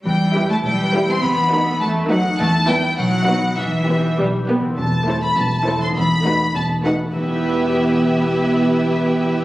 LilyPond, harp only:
\new Staff \with { instrumentName = "Harp" } { \time 2/4 \key e \minor \tempo 4 = 102 << { \tuplet 3/2 { e8 e'8 b'8 e'8 b'8 e'8 } | \tuplet 3/2 { e8 dis'8 a'8 b'8 a'8 dis'8 } | \tuplet 3/2 { e8 e'8 <e' b'>8 b,8 b8 <dis' b'>8 } | \tuplet 3/2 { e8 b8 g'8 b'8 g'8 b8 } |
r2 | r2 | <e b e' g' e''>2~ | <e b e' g' e''>2 | } \\ { r2 | r2 | r2 | r2 |
<e c' e' a'>2 | <e b dis' a'>2~ | <e b dis' a'>2~ | <e b dis' a'>2 | } >> }